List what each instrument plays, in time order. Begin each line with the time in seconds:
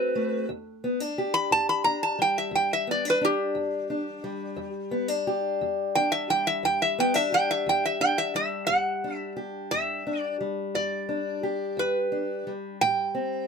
Already playing: steel-string acoustic guitar A3 C4 F#4, resonator guitar played with a steel bar B4
0.15 steel-string acoustic guitar A3
0.49 steel-string acoustic guitar E2
0.84 steel-string acoustic guitar B3
1.00 steel-string acoustic guitar D4
1.18 steel-string acoustic guitar G4
1.34 resonator guitar played with a steel bar B5
1.51 steel-string acoustic guitar E2, resonator guitar played with a steel bar A5
1.69 resonator guitar played with a steel bar B5
1.84 steel-string acoustic guitar D4, resonator guitar played with a steel bar A#5
2.03 resonator guitar played with a steel bar A5
2.19 steel-string acoustic guitar G3, resonator guitar played with a steel bar G5
2.38 resonator guitar played with a steel bar E5
2.51 steel-string acoustic guitar E2
2.55 resonator guitar played with a steel bar G5
2.73 resonator guitar played with a steel bar E5
2.87 steel-string acoustic guitar B3, resonator guitar played with a steel bar D5
3.05 steel-string acoustic guitar D4
3.10 resonator guitar played with a steel bar B4
3.21 steel-string acoustic guitar D4, resonator guitar played with a steel bar G4
3.55 steel-string acoustic guitar E2
3.90 steel-string acoustic guitar D4
4.24 steel-string acoustic guitar G3
4.56 steel-string acoustic guitar E2
4.91 steel-string acoustic guitar B3
5.08 steel-string acoustic guitar D4
5.27 steel-string acoustic guitar G4
5.61 steel-string acoustic guitar E2
5.95 steel-string acoustic guitar D4, resonator guitar played with a steel bar G5
6.12 resonator guitar played with a steel bar E5
6.30 steel-string acoustic guitar G3, resonator guitar played with a steel bar G5
6.47 resonator guitar played with a steel bar E5
6.63 steel-string acoustic guitar E2, resonator guitar played with a steel bar G5
6.82 resonator guitar played with a steel bar E5
6.99 steel-string acoustic guitar B3, resonator guitar played with a steel bar G5
7.14 steel-string acoustic guitar D4, resonator guitar played with a steel bar E5
7.32 steel-string acoustic guitar G4, resonator guitar played with a steel bar G5
7.51 resonator guitar played with a steel bar E5
7.66 steel-string acoustic guitar E2, resonator guitar played with a steel bar G5
7.86 resonator guitar played with a steel bar E5
8.01 steel-string acoustic guitar D4, resonator guitar played with a steel bar G5
8.18 resonator guitar played with a steel bar E5
8.35 steel-string acoustic guitar G3, resonator guitar played with a steel bar E5
8.67 steel-string acoustic guitar E2, resonator guitar played with a steel bar F#5
9.04 steel-string acoustic guitar D4
9.16 resonator guitar played with a steel bar E5
9.37 steel-string acoustic guitar G4
9.71 steel-string acoustic guitar E2, resonator guitar played with a steel bar E5
10.07 steel-string acoustic guitar D4
10.19 resonator guitar played with a steel bar D5
10.41 steel-string acoustic guitar G3
10.75 steel-string acoustic guitar E2, resonator guitar played with a steel bar D5
11.09 steel-string acoustic guitar D4
11.43 steel-string acoustic guitar G4
11.77 steel-string acoustic guitar E2, resonator guitar played with a steel bar B4
12.12 steel-string acoustic guitar D4
12.47 steel-string acoustic guitar G3
12.81 steel-string acoustic guitar A2, resonator guitar played with a steel bar G5
13.15 steel-string acoustic guitar C4